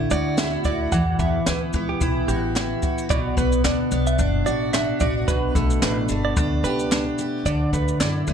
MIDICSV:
0, 0, Header, 1, 5, 480
1, 0, Start_track
1, 0, Key_signature, 2, "minor"
1, 0, Tempo, 544465
1, 814, Time_signature, 4, 2, 24, 8
1, 7346, End_track
2, 0, Start_track
2, 0, Title_t, "Clean electric guitar"
2, 0, Program_c, 0, 27
2, 99, Note_on_c, 0, 74, 78
2, 325, Note_off_c, 0, 74, 0
2, 339, Note_on_c, 0, 76, 77
2, 462, Note_off_c, 0, 76, 0
2, 576, Note_on_c, 0, 74, 72
2, 700, Note_off_c, 0, 74, 0
2, 814, Note_on_c, 0, 78, 106
2, 1041, Note_off_c, 0, 78, 0
2, 1052, Note_on_c, 0, 76, 76
2, 1281, Note_off_c, 0, 76, 0
2, 1294, Note_on_c, 0, 71, 76
2, 1419, Note_off_c, 0, 71, 0
2, 1667, Note_on_c, 0, 67, 77
2, 1769, Note_off_c, 0, 67, 0
2, 2012, Note_on_c, 0, 67, 70
2, 2362, Note_off_c, 0, 67, 0
2, 2736, Note_on_c, 0, 74, 86
2, 2962, Note_off_c, 0, 74, 0
2, 2977, Note_on_c, 0, 71, 71
2, 3203, Note_off_c, 0, 71, 0
2, 3214, Note_on_c, 0, 74, 75
2, 3339, Note_off_c, 0, 74, 0
2, 3588, Note_on_c, 0, 76, 69
2, 3689, Note_off_c, 0, 76, 0
2, 3933, Note_on_c, 0, 74, 72
2, 4161, Note_off_c, 0, 74, 0
2, 4172, Note_on_c, 0, 76, 84
2, 4298, Note_off_c, 0, 76, 0
2, 4415, Note_on_c, 0, 74, 67
2, 4540, Note_off_c, 0, 74, 0
2, 4653, Note_on_c, 0, 71, 101
2, 4882, Note_off_c, 0, 71, 0
2, 4895, Note_on_c, 0, 69, 70
2, 5123, Note_off_c, 0, 69, 0
2, 5135, Note_on_c, 0, 71, 68
2, 5260, Note_off_c, 0, 71, 0
2, 5507, Note_on_c, 0, 74, 76
2, 5609, Note_off_c, 0, 74, 0
2, 5854, Note_on_c, 0, 71, 75
2, 6204, Note_off_c, 0, 71, 0
2, 6576, Note_on_c, 0, 74, 96
2, 6804, Note_off_c, 0, 74, 0
2, 6817, Note_on_c, 0, 71, 75
2, 7044, Note_off_c, 0, 71, 0
2, 7056, Note_on_c, 0, 74, 77
2, 7181, Note_off_c, 0, 74, 0
2, 7346, End_track
3, 0, Start_track
3, 0, Title_t, "Steel-string acoustic guitar"
3, 0, Program_c, 1, 25
3, 0, Note_on_c, 1, 50, 90
3, 0, Note_on_c, 1, 57, 62
3, 0, Note_on_c, 1, 64, 63
3, 97, Note_on_c, 1, 66, 68
3, 326, Note_off_c, 1, 64, 0
3, 330, Note_on_c, 1, 64, 65
3, 573, Note_off_c, 1, 66, 0
3, 576, Note_on_c, 1, 66, 69
3, 810, Note_off_c, 1, 50, 0
3, 813, Note_on_c, 1, 52, 90
3, 866, Note_off_c, 1, 57, 0
3, 1053, Note_on_c, 1, 59, 59
3, 1291, Note_off_c, 1, 64, 0
3, 1294, Note_on_c, 1, 64, 58
3, 1321, Note_off_c, 1, 66, 0
3, 1527, Note_off_c, 1, 59, 0
3, 1531, Note_on_c, 1, 59, 58
3, 1761, Note_off_c, 1, 64, 0
3, 1772, Note_on_c, 1, 64, 60
3, 2013, Note_on_c, 1, 66, 65
3, 2241, Note_off_c, 1, 64, 0
3, 2252, Note_on_c, 1, 64, 63
3, 2485, Note_off_c, 1, 66, 0
3, 2489, Note_on_c, 1, 66, 56
3, 2722, Note_off_c, 1, 52, 0
3, 2725, Note_on_c, 1, 47, 90
3, 2785, Note_off_c, 1, 64, 0
3, 2965, Note_off_c, 1, 59, 0
3, 2969, Note_on_c, 1, 59, 59
3, 3208, Note_on_c, 1, 62, 60
3, 3446, Note_off_c, 1, 59, 0
3, 3450, Note_on_c, 1, 59, 56
3, 3685, Note_off_c, 1, 62, 0
3, 3689, Note_on_c, 1, 62, 60
3, 3927, Note_off_c, 1, 66, 0
3, 3930, Note_on_c, 1, 66, 65
3, 4169, Note_off_c, 1, 62, 0
3, 4173, Note_on_c, 1, 62, 67
3, 4399, Note_off_c, 1, 66, 0
3, 4410, Note_on_c, 1, 66, 64
3, 4643, Note_off_c, 1, 47, 0
3, 4654, Note_on_c, 1, 47, 88
3, 4705, Note_off_c, 1, 66, 0
3, 4897, Note_off_c, 1, 59, 0
3, 4901, Note_on_c, 1, 57, 60
3, 5135, Note_off_c, 1, 62, 0
3, 5139, Note_on_c, 1, 62, 64
3, 5372, Note_off_c, 1, 57, 0
3, 5375, Note_on_c, 1, 57, 62
3, 5610, Note_off_c, 1, 62, 0
3, 5614, Note_on_c, 1, 62, 66
3, 5859, Note_on_c, 1, 67, 68
3, 6089, Note_off_c, 1, 62, 0
3, 6093, Note_on_c, 1, 62, 64
3, 6325, Note_off_c, 1, 67, 0
3, 6336, Note_on_c, 1, 67, 61
3, 6572, Note_off_c, 1, 47, 0
3, 6576, Note_on_c, 1, 50, 87
3, 6628, Note_off_c, 1, 67, 0
3, 6811, Note_off_c, 1, 57, 0
3, 6814, Note_on_c, 1, 57, 62
3, 7053, Note_off_c, 1, 62, 0
3, 7056, Note_on_c, 1, 64, 67
3, 7286, Note_off_c, 1, 57, 0
3, 7296, Note_on_c, 1, 57, 67
3, 7346, Note_off_c, 1, 50, 0
3, 7346, Note_off_c, 1, 57, 0
3, 7346, Note_off_c, 1, 64, 0
3, 7346, End_track
4, 0, Start_track
4, 0, Title_t, "Upright bass"
4, 0, Program_c, 2, 32
4, 96, Note_on_c, 2, 38, 102
4, 489, Note_off_c, 2, 38, 0
4, 571, Note_on_c, 2, 38, 91
4, 769, Note_off_c, 2, 38, 0
4, 811, Note_on_c, 2, 40, 103
4, 1009, Note_off_c, 2, 40, 0
4, 1052, Note_on_c, 2, 40, 104
4, 1249, Note_off_c, 2, 40, 0
4, 1296, Note_on_c, 2, 38, 95
4, 1491, Note_off_c, 2, 38, 0
4, 1532, Note_on_c, 2, 37, 83
4, 1729, Note_off_c, 2, 37, 0
4, 1775, Note_on_c, 2, 35, 93
4, 1971, Note_off_c, 2, 35, 0
4, 2010, Note_on_c, 2, 33, 87
4, 2405, Note_off_c, 2, 33, 0
4, 2734, Note_on_c, 2, 35, 98
4, 2930, Note_off_c, 2, 35, 0
4, 2974, Note_on_c, 2, 35, 95
4, 3170, Note_off_c, 2, 35, 0
4, 3213, Note_on_c, 2, 38, 95
4, 3410, Note_off_c, 2, 38, 0
4, 3453, Note_on_c, 2, 35, 86
4, 3650, Note_off_c, 2, 35, 0
4, 3692, Note_on_c, 2, 30, 91
4, 3890, Note_off_c, 2, 30, 0
4, 4415, Note_on_c, 2, 33, 95
4, 4611, Note_off_c, 2, 33, 0
4, 4655, Note_on_c, 2, 35, 95
4, 4851, Note_off_c, 2, 35, 0
4, 4894, Note_on_c, 2, 35, 91
4, 5091, Note_off_c, 2, 35, 0
4, 5133, Note_on_c, 2, 33, 98
4, 5331, Note_off_c, 2, 33, 0
4, 5371, Note_on_c, 2, 31, 84
4, 5569, Note_off_c, 2, 31, 0
4, 5613, Note_on_c, 2, 38, 106
4, 5811, Note_off_c, 2, 38, 0
4, 5850, Note_on_c, 2, 37, 91
4, 6246, Note_off_c, 2, 37, 0
4, 6574, Note_on_c, 2, 38, 102
4, 6772, Note_off_c, 2, 38, 0
4, 6815, Note_on_c, 2, 38, 94
4, 7012, Note_off_c, 2, 38, 0
4, 7056, Note_on_c, 2, 42, 88
4, 7253, Note_off_c, 2, 42, 0
4, 7295, Note_on_c, 2, 38, 94
4, 7346, Note_off_c, 2, 38, 0
4, 7346, End_track
5, 0, Start_track
5, 0, Title_t, "Drums"
5, 91, Note_on_c, 9, 82, 56
5, 179, Note_off_c, 9, 82, 0
5, 330, Note_on_c, 9, 82, 62
5, 333, Note_on_c, 9, 38, 104
5, 339, Note_on_c, 9, 39, 81
5, 419, Note_off_c, 9, 82, 0
5, 421, Note_off_c, 9, 38, 0
5, 427, Note_off_c, 9, 39, 0
5, 567, Note_on_c, 9, 82, 48
5, 571, Note_on_c, 9, 36, 76
5, 655, Note_off_c, 9, 82, 0
5, 660, Note_off_c, 9, 36, 0
5, 811, Note_on_c, 9, 82, 71
5, 812, Note_on_c, 9, 36, 114
5, 899, Note_off_c, 9, 82, 0
5, 900, Note_off_c, 9, 36, 0
5, 1050, Note_on_c, 9, 36, 90
5, 1052, Note_on_c, 9, 82, 49
5, 1138, Note_off_c, 9, 36, 0
5, 1140, Note_off_c, 9, 82, 0
5, 1290, Note_on_c, 9, 38, 115
5, 1294, Note_on_c, 9, 82, 84
5, 1295, Note_on_c, 9, 39, 80
5, 1378, Note_off_c, 9, 38, 0
5, 1382, Note_off_c, 9, 82, 0
5, 1383, Note_off_c, 9, 39, 0
5, 1526, Note_on_c, 9, 82, 54
5, 1534, Note_on_c, 9, 36, 87
5, 1614, Note_off_c, 9, 82, 0
5, 1622, Note_off_c, 9, 36, 0
5, 1772, Note_on_c, 9, 82, 65
5, 1773, Note_on_c, 9, 36, 83
5, 1860, Note_off_c, 9, 82, 0
5, 1861, Note_off_c, 9, 36, 0
5, 2015, Note_on_c, 9, 82, 51
5, 2104, Note_off_c, 9, 82, 0
5, 2255, Note_on_c, 9, 39, 75
5, 2255, Note_on_c, 9, 82, 70
5, 2258, Note_on_c, 9, 38, 105
5, 2343, Note_off_c, 9, 39, 0
5, 2344, Note_off_c, 9, 82, 0
5, 2346, Note_off_c, 9, 38, 0
5, 2490, Note_on_c, 9, 82, 52
5, 2494, Note_on_c, 9, 36, 78
5, 2579, Note_off_c, 9, 82, 0
5, 2582, Note_off_c, 9, 36, 0
5, 2628, Note_on_c, 9, 82, 46
5, 2716, Note_off_c, 9, 82, 0
5, 2735, Note_on_c, 9, 36, 104
5, 2737, Note_on_c, 9, 82, 74
5, 2823, Note_off_c, 9, 36, 0
5, 2826, Note_off_c, 9, 82, 0
5, 2972, Note_on_c, 9, 36, 84
5, 2977, Note_on_c, 9, 82, 57
5, 3061, Note_off_c, 9, 36, 0
5, 3065, Note_off_c, 9, 82, 0
5, 3105, Note_on_c, 9, 82, 51
5, 3194, Note_off_c, 9, 82, 0
5, 3212, Note_on_c, 9, 38, 109
5, 3215, Note_on_c, 9, 39, 80
5, 3215, Note_on_c, 9, 82, 81
5, 3300, Note_off_c, 9, 38, 0
5, 3303, Note_off_c, 9, 39, 0
5, 3304, Note_off_c, 9, 82, 0
5, 3450, Note_on_c, 9, 82, 61
5, 3538, Note_off_c, 9, 82, 0
5, 3585, Note_on_c, 9, 82, 58
5, 3673, Note_off_c, 9, 82, 0
5, 3692, Note_on_c, 9, 82, 69
5, 3694, Note_on_c, 9, 36, 77
5, 3780, Note_off_c, 9, 82, 0
5, 3782, Note_off_c, 9, 36, 0
5, 3935, Note_on_c, 9, 82, 54
5, 4023, Note_off_c, 9, 82, 0
5, 4175, Note_on_c, 9, 82, 66
5, 4177, Note_on_c, 9, 39, 80
5, 4178, Note_on_c, 9, 38, 109
5, 4264, Note_off_c, 9, 82, 0
5, 4265, Note_off_c, 9, 39, 0
5, 4266, Note_off_c, 9, 38, 0
5, 4408, Note_on_c, 9, 82, 52
5, 4414, Note_on_c, 9, 36, 80
5, 4496, Note_off_c, 9, 82, 0
5, 4502, Note_off_c, 9, 36, 0
5, 4655, Note_on_c, 9, 36, 115
5, 4657, Note_on_c, 9, 82, 72
5, 4744, Note_off_c, 9, 36, 0
5, 4745, Note_off_c, 9, 82, 0
5, 4894, Note_on_c, 9, 36, 90
5, 4898, Note_on_c, 9, 82, 53
5, 4982, Note_off_c, 9, 36, 0
5, 4987, Note_off_c, 9, 82, 0
5, 5026, Note_on_c, 9, 82, 49
5, 5115, Note_off_c, 9, 82, 0
5, 5131, Note_on_c, 9, 38, 122
5, 5135, Note_on_c, 9, 82, 76
5, 5137, Note_on_c, 9, 39, 81
5, 5219, Note_off_c, 9, 38, 0
5, 5223, Note_off_c, 9, 82, 0
5, 5225, Note_off_c, 9, 39, 0
5, 5364, Note_on_c, 9, 82, 58
5, 5452, Note_off_c, 9, 82, 0
5, 5612, Note_on_c, 9, 82, 66
5, 5614, Note_on_c, 9, 36, 90
5, 5700, Note_off_c, 9, 82, 0
5, 5702, Note_off_c, 9, 36, 0
5, 5857, Note_on_c, 9, 82, 52
5, 5945, Note_off_c, 9, 82, 0
5, 5988, Note_on_c, 9, 82, 45
5, 6077, Note_off_c, 9, 82, 0
5, 6096, Note_on_c, 9, 82, 68
5, 6097, Note_on_c, 9, 39, 84
5, 6099, Note_on_c, 9, 38, 115
5, 6185, Note_off_c, 9, 39, 0
5, 6185, Note_off_c, 9, 82, 0
5, 6187, Note_off_c, 9, 38, 0
5, 6332, Note_on_c, 9, 82, 50
5, 6420, Note_off_c, 9, 82, 0
5, 6575, Note_on_c, 9, 36, 120
5, 6576, Note_on_c, 9, 82, 78
5, 6663, Note_off_c, 9, 36, 0
5, 6664, Note_off_c, 9, 82, 0
5, 6814, Note_on_c, 9, 36, 87
5, 6819, Note_on_c, 9, 82, 55
5, 6902, Note_off_c, 9, 36, 0
5, 6907, Note_off_c, 9, 82, 0
5, 6948, Note_on_c, 9, 82, 49
5, 7036, Note_off_c, 9, 82, 0
5, 7056, Note_on_c, 9, 38, 110
5, 7057, Note_on_c, 9, 39, 86
5, 7059, Note_on_c, 9, 82, 81
5, 7144, Note_off_c, 9, 38, 0
5, 7145, Note_off_c, 9, 39, 0
5, 7147, Note_off_c, 9, 82, 0
5, 7293, Note_on_c, 9, 82, 59
5, 7346, Note_off_c, 9, 82, 0
5, 7346, End_track
0, 0, End_of_file